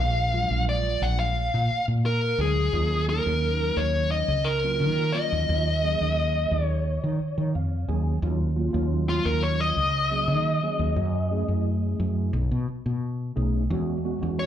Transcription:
Already playing: A#1 F5
0.32 F#3 G#3 D4 F4
0.50 A#1
0.69 D5
1.01 A#1 F#5
1.19 F5
1.54 A#2
1.71 muted fretless electric bass stroke
1.88 A#2
2.06 A#4
2.38 D2 F#3 G#3 D4 G#4
2.73 D#2 F#3 A#3 C#4 F4
3.08 F#3 A#3 C#4 D#4 A#4
3.25 D#2 F#3 A#3 C#4 D#4
3.77 D#2 C#5
4.11 D#5
4.28 C#2
4.44 A#4
4.63 F#3 A#3 C#4 F4
4.80 D#3
5.12 F#3 A#3 C#4 F4 D#5
5.32 D#2
5.49 D#2
5.82 F#3 A#3 C#4 G#4
6.01 D#2
6.51 D#2
6.64 C#5
7.04 D#3
7.19 C#5, muted fretless electric bass stroke
7.38 D#3
7.55 F2 F5
7.88 D#2 F#3 A#3 C#4 G#4 G#5
8.22 D#2 F#3 A#3 C#4 F4
8.55 F#3 A#3 C#4 F4
8.73 D#2 F#3 A#3 C#4 F4
9.09 F4
9.25 D#2 A#4
9.43 C#5
9.60 D#5
9.76 C#2
10.10 F#3 A#3 C#4 G#4
10.28 D#3
10.62 F#3 A#3 C#4 G#4
10.79 D#2
10.96 F#2
11.31 A3 C#4 E4 G#4
11.48 F#2
12.00 F#2
12.33 B1
12.51 B2
12.68 muted fretless electric bass stroke
12.86 B2
13.36 B1 A3 C#4 D#4 G#4
13.70 E2 G#3 B3 C#4 F#4
14.04 G#3 B3 C#4 F#4
14.21 E2 G#3 B3 C#4 F#4
14.39 C#5

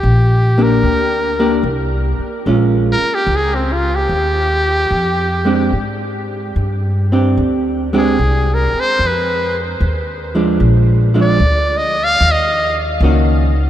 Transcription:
Already playing: G4
0.03 A#1
0.58 A#3 D4 G4
0.62 A#4
0.83 D2
1.39 A#3 D4 G4
1.63 C2
2.19 muted upright bass stroke
2.46 A#1 G#3 C#4 F4
2.92 A#4
3.00 muted upright bass stroke
3.15 G4
3.27 C#2
3.36 G#4
3.55 C4
3.73 F4
3.95 G4
4.09 D#2
4.91 F2
5.45 G#3 C4 D4 G4
5.73 G#2
6.56 G2
7.12 C4 D4 G4
7.37 D2
7.93 G#3 C4 D4 G4
7.98 G#4
8.19 C2
8.54 A#4
8.73 muted upright bass stroke
8.80 C5
8.99 F2
9.07 B4
9.80 D#2
10.35 F3 G#3 D4
10.60 A#1
11.14 F3 G#3 D4
11.21 D5
11.40 D2
11.77 D#5
12.04 F5
12.20 D#2
12.32 D#5
13.00 C#2 D#3 A#3 C#4 F#4

